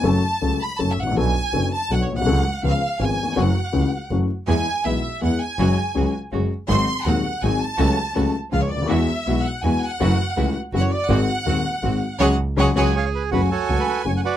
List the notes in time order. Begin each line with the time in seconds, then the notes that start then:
0.04 F#1 F#2 F#3 A3 C#4 A4 A5
0.41 C#2 C#3 F#3 A3 C#4 A4
0.62 B5
0.79 F#1 F#2 F#3 A3 C#4 A4 A5
0.91 E5
0.98 A1 F#5
1.02 G#1
1.07 A1
1.11 A#1
1.16 B1 B2 F#3 B3 D4 A4 G#5
1.53 F#1 F#2 F#3 B3 D4 A4
1.73 A5
1.90 B1 B2 F#3 B3 D4 A4 F#5
2.02 C#5
2.09 A#1 B1
2.17 B1 F#5
2.22 C2
2.26 C#2 C#3 F#3 A3 C#4 A4
2.63 C#2 C#3 F3 B3 C#4 G#4 F5
2.99 G#1 G#2 F3 B3 C#4 G#4 G#5
3.23 D#2
3.27 E2
3.32 F2
3.36 F#1 F#2 E3 F#3 A3 C#4 F#4 F#5
3.72 C#2 C#3 E3 A3 C#4 F#4
4.11 F#1 F#2 E3 F#3 A3 C#4 F#4
4.47 E2 E3 G#3 B3 E4 G#4 G#5
4.84 B1 B2 E3 G#3 B3 E4 G#4 E5
5.21 E2 E3 G#3 B3 E4 G#4 F#5
5.42 G#5
5.58 F#1 F#2 F#3 G#3 C#4 F#4 G#4
5.95 C#2 C#3 F#3 G#3 C#4 F#4 G#4
6.32 F#1 F#2 F#3 G#3 C#4 F#4 G#4
6.69 G#1 G#2 F#3 G#3 C4 D#4 F#4 G#4 C6
7.05 D#1 D#2 F#3 G#3 C4 D#4 F#4 G#4 F#5
7.43 G#1 G#2 F#3 G#3 C4 D#4 F#4 G#4 G#5
7.61 A5
7.78 C#2 C#3 F#3 A3 C#4 F#4 A4
8.15 C#2 C#3 F#3 A3 C#4 F#4 A4
8.51 C#2 C#3 F3 G#3 C#4 F4 G#4 F5
8.62 C#5
8.70 D2 D5
8.77 C#2
8.82 D2 D#2
8.89 E2 E3 G#3 B3 E4 F#4 E5
9.26 B1 B2 E3 G#3 B3 E4 F#4
9.44 F#5
9.63 E2 E3 G#3 B3 E4 F#4 G#5
9.84 F#5
10.00 F#1 F#2 E3 F#3 A3 C#4 E4 F#4
10.36 C#2 C#3 E3 A3 C#4 E4 F#4
10.73 F#1 F#2 E3 F#3 A3 C#4 E4 F#4 F#5
10.83 C#5
10.91 D5
11.08 G#1 G#2 D#3 G#3 C4 F#4 F#5
11.46 D#1 D#2 D#3 G#3 C4 F#4
11.83 G#1 G#2 D#3 G#3 C4 F#4
12.20 C#2 C#3 F#3 G#3 C#4 F#4 G#4 C#5 F#5
12.57 C#2 C#3 F#3 G#3 C#4 F#4 G#4 C#5 F#5
12.75 C#2 C#3 F#3 G#3 C#4 F#4 G#4 C#5 F#5 G#5
12.95 G#4 C#5 F5
13.05 C#5
13.15 B4
13.31 F#1 F#2 C#3 F#3 A3 F#4 B4 G#5
13.51 F#4 A4 C#5
13.69 C#2 C#3 F#3 A3 F#4
13.80 B4
13.89 B4
14.05 F#1 F#2 C#3 F#3 A3 F#4 C#5
14.17 F#5
14.25 F#4 B4 D5